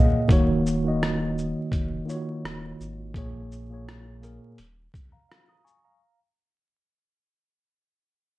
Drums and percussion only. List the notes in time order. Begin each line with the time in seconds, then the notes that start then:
0.29 kick, closed hi-hat
0.67 shaker
1.03 cross-stick, closed hi-hat
1.38 shaker
1.72 kick, closed hi-hat
2.09 shaker
2.45 cross-stick, closed hi-hat
2.81 shaker
3.14 kick, closed hi-hat
3.52 shaker
3.89 cross-stick, closed hi-hat
4.23 closed hi-hat, shaker
4.58 closed hi-hat
4.94 kick, closed hi-hat, shaker
5.31 cross-stick, closed hi-hat
5.67 shaker